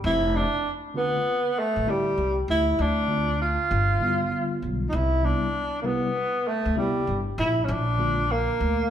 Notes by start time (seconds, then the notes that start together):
0.04 F1 E4
0.36 D4
0.94 D3 A3 B3 C4 F4
1.59 A3
1.76 A1
1.85 D3 G3 A3 C4 E4
2.18 C2
2.48 D2 E4
2.79 D2 D4
3.08 D3 A3 C4 F4
3.42 F4
3.71 G1
3.99 D3 G3 B3 E4
4.08 F4
4.62 B1
4.89 C2 D#4
4.95 E4
5.22 C3 G3 B3 D4 E4
5.82 C3 G3 A#3 B3 E4
5.86 B3
6.48 A3
6.65 D2
6.75 C3 G3 B3 E4
7.07 G1
7.38 A#1 E4
7.65 A#1 C#4
7.71 D4
7.98 D3 G#3 A#3 F4
8.32 A#3
8.60 D2